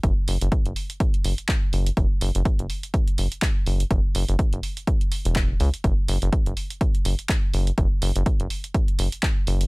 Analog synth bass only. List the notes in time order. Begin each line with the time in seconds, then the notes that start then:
0.04 F#1
0.28 F#1
0.41 F#1
0.66 F#1
1.24 F#1
1.73 F#1
1.97 F#1
2.21 F#1
2.35 F#1
2.59 F#1
3.18 F#1
3.67 F#1
3.91 F#1
4.15 F#1
4.29 F#1
4.53 F#1
5.25 E1
5.60 C#2
5.84 F#1
6.08 F#1
6.22 F#1
6.46 F#1
7.05 F#1
7.54 F#1
7.78 F#1
8.02 F#1
8.16 F#1
8.40 F#1
8.99 F#1
9.47 F#1